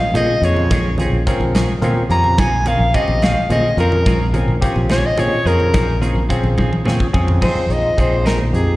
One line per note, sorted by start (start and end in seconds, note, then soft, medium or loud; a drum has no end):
0.00 7.37 C#3 medium
0.00 7.37 G#3 medium
0.00 7.37 A#3 medium
0.00 0.15 F5 medium
0.00 low conga soft
0.14 0.27 A#2 medium
0.14 0.32 F3 medium
0.14 0.35 C4 medium
0.14 0.32 C4 medium
0.14 0.34 C#4 medium
0.14 0.32 C#4 medium
0.14 0.35 F4 medium
0.14 0.35 G#4 medium
0.14 0.32 G#4 medium
0.14 0.46 D#5 medium
0.14 closed hi-hat medium
0.14 low conga medium
0.42 0.69 F2 medium
0.42 0.83 A#3 medium
0.42 0.61 C4 soft
0.42 0.83 C#4 medium
0.42 0.61 C#4 soft
0.42 0.83 F4 medium
0.42 0.83 G#4 medium
0.42 0.60 G#4 soft
0.42 0.98 C#5 loud
0.42 closed hi-hat medium
0.56 low conga medium
0.71 1.10 A#1 medium
0.71 0.88 F3 medium
0.71 0.88 C4 medium
0.71 0.88 C#4 medium
0.71 0.88 G#4 medium
0.71 kick loud
0.71 closed hi-hat medium
0.71 high conga loud
0.71 low conga soft
0.98 1.19 C4 medium
0.98 1.17 C4 soft
0.98 1.19 C#4 medium
0.98 1.17 C#4 soft
0.98 1.19 F4 medium
0.98 1.19 G#4 medium
0.98 1.16 G#4 soft
0.98 closed hi-hat medium
0.98 low conga loud
1.12 1.25 A#1 medium
1.26 1.44 F3 medium
1.26 1.67 C4 medium
1.26 1.44 C4 medium
1.26 1.67 C#4 medium
1.26 1.44 C#4 medium
1.26 1.67 F4 medium
1.26 1.44 G#4 medium
1.26 1.67 A#4 medium
1.26 kick medium
1.26 closed hi-hat medium
1.40 1.67 A#1 medium
1.40 low conga medium
1.55 1.72 F3 medium
1.55 1.72 C4 medium
1.55 1.72 C#4 medium
1.55 1.72 G#4 medium
1.55 snare loud
1.55 closed hi-hat medium
1.55 high conga medium
1.82 1.95 A#2 medium
1.82 2.00 F3 medium
1.82 2.02 C4 medium
1.82 2.00 C4 medium
1.82 2.02 C#4 medium
1.82 2.00 C#4 medium
1.82 2.02 F4 medium
1.82 2.00 G#4 medium
1.82 2.02 A#4 medium
1.82 closed hi-hat medium
1.82 low conga loud
2.09 2.36 F2 medium
2.09 2.50 C4 medium
2.09 2.28 C4 soft
2.09 2.50 C#4 medium
2.09 2.28 C#4 soft
2.09 2.50 F4 medium
2.09 2.50 G4 medium
2.09 2.27 G#4 soft
2.09 2.41 A#5 loud
2.09 closed hi-hat medium
2.24 low conga medium
2.38 2.78 A#1 medium
2.38 2.55 F3 medium
2.38 2.56 C4 medium
2.38 2.56 C#4 medium
2.38 2.56 G#4 medium
2.38 2.69 G#5 medium
2.38 kick loud
2.38 closed hi-hat medium
2.38 high conga loud
2.38 low conga soft
2.66 2.86 C4 medium
2.66 2.84 C4 soft
2.66 2.86 C#4 medium
2.66 2.84 C#4 soft
2.66 2.86 F4 medium
2.66 2.83 G#4 medium
2.66 2.86 A#4 medium
2.66 2.96 F5 medium
2.66 closed hi-hat medium
2.66 low conga loud
2.79 2.93 A#1 medium
2.94 3.11 F3 medium
2.94 3.34 C4 medium
2.94 3.11 C4 medium
2.94 3.34 C#4 medium
2.94 3.12 C#4 medium
2.94 3.34 F4 medium
2.94 3.34 G4 medium
2.94 3.12 G#4 medium
2.94 3.25 D#5 loud
2.94 kick medium
2.94 closed hi-hat medium
3.08 3.34 A#1 medium
3.08 low conga medium
3.22 3.40 F3 medium
3.22 3.40 C4 medium
3.22 3.39 C#4 medium
3.22 3.39 G#4 medium
3.22 3.50 F5 medium
3.22 snare loud
3.22 closed hi-hat medium
3.22 high conga loud
3.50 3.63 A#2 medium
3.50 3.67 F3 medium
3.50 3.70 C4 medium
3.50 3.67 C4 medium
3.50 3.70 C#4 medium
3.50 3.68 C#4 medium
3.50 3.70 F4 medium
3.50 3.70 G#4 medium
3.50 3.68 G#4 medium
3.50 3.78 D#5 medium
3.50 closed hi-hat medium
3.50 low conga loud
3.77 4.04 F2 medium
3.77 4.18 C4 medium
3.77 3.96 C4 soft
3.77 4.18 C#4 medium
3.77 3.96 C#4 soft
3.77 4.18 F4 medium
3.77 3.95 G#4 soft
3.77 4.18 A#4 medium
3.77 4.33 A#4 loud
3.77 closed hi-hat medium
3.92 low conga medium
4.06 4.46 A#1 loud
4.06 4.23 F3 medium
4.06 4.23 C4 medium
4.06 4.23 C#4 medium
4.06 4.23 G#4 medium
4.06 kick loud
4.06 closed hi-hat medium
4.06 high conga loud
4.06 low conga soft
4.34 4.54 C4 medium
4.34 4.51 C4 soft
4.34 4.54 C#4 medium
4.34 4.51 C#4 medium
4.34 4.54 F4 medium
4.34 4.51 G#4 medium
4.34 4.54 A#4 medium
4.34 closed hi-hat medium
4.34 low conga loud
4.48 4.61 A#1 medium
4.61 4.79 F3 medium
4.61 5.02 C4 medium
4.61 4.79 C4 medium
4.61 5.02 C#4 medium
4.61 4.79 C#4 medium
4.61 5.02 F4 medium
4.61 5.02 G4 medium
4.61 4.79 G#4 medium
4.61 kick medium
4.61 closed hi-hat medium
4.76 5.02 A#1 medium
4.76 low conga medium
4.89 5.07 F3 medium
4.89 5.07 C4 medium
4.89 5.07 C#4 medium
4.89 5.07 G#4 medium
4.89 5.07 C#5 medium
4.89 snare loud
4.89 closed hi-hat medium
4.89 high conga loud
5.06 5.21 D#5 medium
5.17 5.31 A#2 medium
5.17 5.35 F3 medium
5.17 5.38 C4 medium
5.17 5.35 C4 medium
5.17 5.38 C#4 medium
5.17 5.35 C#4 medium
5.17 5.38 F4 medium
5.17 5.38 G#4 medium
5.17 5.35 G#4 medium
5.17 5.48 C#5 loud
5.17 closed hi-hat medium
5.17 low conga loud
5.45 5.72 F2 medium
5.45 5.86 C4 medium
5.45 5.63 C4 soft
5.45 5.86 C#4 medium
5.45 5.63 C#4 soft
5.45 5.86 F4 medium
5.45 5.62 G#4 soft
5.45 5.86 G#4 medium
5.45 6.01 A#4 loud
5.45 closed hi-hat medium
5.60 low conga medium
5.73 6.14 A#1 loud
5.73 5.90 F3 medium
5.73 5.91 C4 medium
5.73 5.91 C#4 medium
5.73 5.91 G#4 medium
5.73 kick loud
5.73 closed hi-hat medium
5.73 high conga loud
6.01 6.22 C4 medium
6.01 6.19 C4 soft
6.01 6.22 C#4 medium
6.01 6.19 C#4 soft
6.01 6.22 F4 medium
6.01 6.18 G#4 medium
6.01 6.22 A#4 medium
6.01 closed hi-hat medium
6.01 low conga loud
6.15 6.29 A#1 medium
6.29 6.46 F3 medium
6.29 6.46 C4 medium
6.29 6.70 C4 medium
6.29 6.70 C#4 medium
6.29 6.47 C#4 medium
6.29 6.70 F4 medium
6.29 6.70 G#4 medium
6.29 6.47 G#4 medium
6.29 kick medium
6.29 closed hi-hat medium
6.43 6.70 A#1 medium
6.43 low conga medium
6.58 6.75 F3 medium
6.58 6.75 C4 medium
6.58 6.75 C#4 medium
6.58 6.74 G#4 medium
6.58 kick medium
6.58 high conga loud
6.73 high tom medium
6.85 6.99 A#2 medium
6.85 7.02 F3 medium
6.85 7.02 C4 medium
6.85 7.06 C4 medium
6.85 7.02 C#4 medium
6.85 7.06 C#4 medium
6.85 7.06 F4 medium
6.85 7.06 G#4 medium
6.85 7.03 G#4 medium
6.85 7.38 C#5 medium
6.85 snare medium
6.85 low conga loud
7.00 kick medium
7.00 low conga soft
7.13 7.40 F2 medium
7.13 7.41 C4 medium
7.13 7.31 C4 medium
7.13 7.41 C#4 medium
7.13 7.31 C#4 medium
7.13 7.41 F4 medium
7.13 7.30 G#4 medium
7.13 7.41 G#4 medium
7.13 kick loud
7.28 floor tom medium
7.28 low conga medium
7.41 7.54 A#1 medium
7.41 7.58 F3 medium
7.41 7.58 C4 medium
7.41 7.64 C4 medium
7.41 7.64 D#4 medium
7.41 7.59 D#4 medium
7.41 7.64 F4 medium
7.41 7.59 G#4 medium
7.41 7.64 G#4 medium
7.41 7.74 C5 medium
7.41 kick loud
7.41 crash medium
7.41 high conga medium
7.54 muted fretless electric bass stroke soft
7.54 low conga medium
7.69 7.82 A#1 medium
7.69 7.90 C4 medium
7.69 7.90 D#4 medium
7.69 7.90 F4 soft
7.69 7.90 G#4 medium
7.69 8.01 D#5 medium
7.69 closed hi-hat soft
7.97 8.50 A#1 medium
7.97 8.14 F3 medium
7.97 8.38 C4 medium
7.97 8.15 C4 medium
7.97 8.38 D#4 medium
7.97 8.15 D#4 medium
7.97 8.38 F4 medium
7.97 8.38 G#4 medium
7.97 8.15 G#4 medium
7.97 8.26 C5 medium
7.97 kick medium
7.97 closed hi-hat medium
8.25 8.43 F3 soft
8.25 8.42 C4 medium
8.25 8.42 D#4 medium
8.25 8.42 G#4 medium
8.25 8.39 A#4 medium
8.25 snare loud
8.25 closed hi-hat medium
8.25 high conga medium
8.41 low conga medium
8.53 8.76 F2 medium
8.53 8.73 C4 medium
8.53 8.73 D#4 medium
8.53 8.73 F4 medium
8.53 8.73 G4 medium
8.53 8.76 G#4 medium
8.53 closed hi-hat medium
8.68 low conga soft